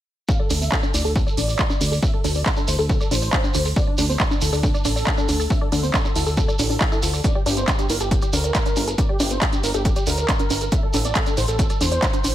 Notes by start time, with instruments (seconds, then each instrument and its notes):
0.29 synth arpeggio sound D4, supersaw synth F5, kick, shekere
0.40 supersaw synth A4, synth arpeggio sound D5
0.50 analog synth bass D2, synth arpeggio sound D4, supersaw synth A4, open hi-hat, shekere
0.61 synth arpeggio sound C4, supersaw synth E5, shekere
0.72 synth arpeggio sound D4, supersaw synth A4, kick, clap, shekere
0.83 synth arpeggio sound D4, supersaw synth A4, shekere
0.94 analog synth bass D2, synth arpeggio sound E4, supersaw synth D5, open hi-hat, shekere
1.05 analog synth bass D2, synth arpeggio sound A4, supersaw synth A4, shekere
1.16 supersaw synth A4, kick, shekere
1.27 supersaw synth A4, synth arpeggio sound D5, shekere
1.37 analog synth bass A1, synth arpeggio sound D4, supersaw synth D5, open hi-hat, shekere
1.48 synth arpeggio sound D5, shekere
1.59 synth arpeggio sound D4, kick, clap, shekere
1.70 synth arpeggio sound D4, shekere
1.81 analog synth bass D2, synth arpeggio sound D4, open hi-hat, shekere
1.92 synth arpeggio sound A4, shekere
2.03 synth arpeggio sound D4, supersaw synth E5, kick, shekere
2.14 supersaw synth A4, synth arpeggio sound D5
2.24 analog synth bass D2, synth arpeggio sound D4, supersaw synth A4, open hi-hat, shekere
2.34 synth arpeggio sound C4, supersaw synth D5, shekere
2.46 synth arpeggio sound D4, supersaw synth A4, kick, clap, shekere
2.56 synth arpeggio sound D4, supersaw synth A4, shekere
2.68 analog synth bass D2, synth arpeggio sound E4, supersaw synth C5, open hi-hat, shekere
2.78 analog synth bass D2, synth arpeggio sound A4, supersaw synth A4, shekere
2.89 synth arpeggio sound A4, supersaw synth A4, kick, shekere
3.00 supersaw synth A4, synth arpeggio sound D5, shekere
3.11 analog synth bass A1, synth arpeggio sound D4, supersaw synth C5, open hi-hat, shekere
3.22 synth arpeggio sound D5, shekere
3.32 synth arpeggio sound D4, kick, clap, shekere
3.44 synth arpeggio sound D4, shekere
3.54 analog synth bass D2, synth arpeggio sound D4, open hi-hat, shekere
3.65 synth arpeggio sound A4, shekere
3.76 synth arpeggio sound D4, supersaw synth D5, kick, shekere
3.87 supersaw synth D4, synth arpeggio sound D5
3.98 analog synth bass D2, synth arpeggio sound D4, supersaw synth D4, open hi-hat, shekere
4.09 synth arpeggio sound C4, supersaw synth C5, shekere
4.20 supersaw synth D4, synth arpeggio sound D4, kick, clap, shekere
4.31 supersaw synth D4, synth arpeggio sound D4, shekere
4.41 analog synth bass D2, synth arpeggio sound E4, supersaw synth A4, open hi-hat, shekere
4.52 analog synth bass D2, supersaw synth D4, synth arpeggio sound A4, shekere
4.63 supersaw synth D4, synth arpeggio sound A4, kick, shekere
4.74 supersaw synth D4, synth arpeggio sound D5, shekere
4.84 analog synth bass A1, synth arpeggio sound D4, supersaw synth A4, open hi-hat, shekere
4.96 synth arpeggio sound D5, shekere
5.06 synth arpeggio sound D4, kick, clap, shekere
5.18 synth arpeggio sound D4, shekere
5.28 analog synth bass D2, synth arpeggio sound D4, open hi-hat, shekere
5.40 synth arpeggio sound A4, shekere
5.50 synth arpeggio sound D4, supersaw synth E5, kick, shekere
5.61 supersaw synth A4, synth arpeggio sound D5
5.72 analog synth bass D2, synth arpeggio sound D4, supersaw synth A4, open hi-hat, shekere
5.83 synth arpeggio sound C4, supersaw synth C5, shekere
5.94 synth arpeggio sound D4, supersaw synth A4, kick, clap, shekere
6.05 synth arpeggio sound D4, supersaw synth A4, shekere
6.16 analog synth bass D2, synth arpeggio sound E4, supersaw synth A4, open hi-hat, shekere
6.26 analog synth bass D2, synth arpeggio sound A4, supersaw synth A4, shekere
6.37 supersaw synth A4, synth arpeggio sound A4, kick, shekere
6.48 supersaw synth A4, synth arpeggio sound D5, shekere
6.59 analog synth bass A1, synth arpeggio sound D4, supersaw synth A4, open hi-hat, shekere
6.70 synth arpeggio sound D4, shekere
6.81 synth arpeggio sound E4, kick, clap, shekere
6.92 synth arpeggio sound E4, shekere
7.03 analog synth bass D2, synth arpeggio sound F4, open hi-hat, shekere
7.14 synth arpeggio sound D5, shekere
7.24 synth arpeggio sound D4, supersaw synth D5, kick, closed hi-hat, shekere
7.35 supersaw synth G4, synth arpeggio sound D5
7.46 analog synth bass G1, synth arpeggio sound D4, supersaw synth G4, open hi-hat, shekere
7.57 synth arpeggio sound C4, supersaw synth C5, closed hi-hat, shekere
7.68 synth arpeggio sound D4, supersaw synth G4, kick, clap, closed hi-hat, shekere
7.79 synth arpeggio sound D4, supersaw synth G4, closed hi-hat, shekere
7.89 analog synth bass G1, synth arpeggio sound E4, supersaw synth A#4, open hi-hat, shekere
8.00 analog synth bass G1, supersaw synth G4, synth arpeggio sound A4, closed hi-hat, shekere
8.11 supersaw synth G4, synth arpeggio sound A4, kick, closed hi-hat, shekere
8.22 supersaw synth G4, synth arpeggio sound D5, closed hi-hat, shekere
8.33 analog synth bass D2, synth arpeggio sound D4, supersaw synth A#4, open hi-hat, shekere
8.44 synth arpeggio sound D5, closed hi-hat, shekere
8.55 synth arpeggio sound D4, kick, clap, closed hi-hat, shekere
8.66 synth arpeggio sound D4, closed hi-hat, shekere
8.76 analog synth bass G1, synth arpeggio sound D4, open hi-hat, shekere
8.87 synth arpeggio sound A4, closed hi-hat, shekere
8.98 synth arpeggio sound D4, supersaw synth D5, kick, closed hi-hat, shekere
9.09 supersaw synth G4, synth arpeggio sound D5
9.20 analog synth bass G1, synth arpeggio sound D4, supersaw synth G4, open hi-hat, shekere
9.30 synth arpeggio sound C4, supersaw synth C5, closed hi-hat, shekere
9.42 synth arpeggio sound D4, supersaw synth G4, kick, clap, closed hi-hat, shekere
9.52 synth arpeggio sound D4, supersaw synth G4, closed hi-hat, shekere
9.63 analog synth bass G1, synth arpeggio sound E4, supersaw synth A#4, open hi-hat, shekere
9.74 analog synth bass G1, supersaw synth G4, synth arpeggio sound A4, closed hi-hat, shekere
9.85 supersaw synth G4, synth arpeggio sound A4, kick, closed hi-hat, shekere
9.96 supersaw synth G4, synth arpeggio sound D5, closed hi-hat, shekere
10.06 analog synth bass D2, synth arpeggio sound D4, supersaw synth A#4, open hi-hat, shekere
10.18 synth arpeggio sound D5, closed hi-hat, shekere
10.29 synth arpeggio sound D4, kick, clap, closed hi-hat, shekere
10.39 synth arpeggio sound D4, closed hi-hat, shekere
10.50 analog synth bass G1, synth arpeggio sound D4, open hi-hat, shekere
10.61 synth arpeggio sound A4, closed hi-hat, shekere
10.72 synth arpeggio sound D4, supersaw synth E5, kick, closed hi-hat, shekere
10.83 supersaw synth A4, synth arpeggio sound D5
10.93 analog synth bass A1, synth arpeggio sound D4, supersaw synth A4, open hi-hat, shekere
11.05 synth arpeggio sound C4, supersaw synth D5, closed hi-hat, shekere
11.15 synth arpeggio sound D4, supersaw synth A4, kick, clap, closed hi-hat, shekere
11.26 synth arpeggio sound D4, supersaw synth A4, closed hi-hat, shekere
11.37 analog synth bass A1, synth arpeggio sound E4, supersaw synth C5, open hi-hat, shekere
11.48 analog synth bass A1, synth arpeggio sound A4, supersaw synth A4, closed hi-hat, shekere
11.59 synth arpeggio sound A4, supersaw synth A4, kick, closed hi-hat, shekere
11.69 supersaw synth A4, synth arpeggio sound D5, closed hi-hat, shekere
11.81 analog synth bass E2, synth arpeggio sound D4, supersaw synth C5, open hi-hat, shekere
11.92 synth arpeggio sound D5, closed hi-hat, shekere
12.02 synth arpeggio sound D4, kick, clap, closed hi-hat, shekere
12.13 synth arpeggio sound D4, closed hi-hat, shekere
12.24 analog synth bass A1, synth arpeggio sound D4, open hi-hat, shekere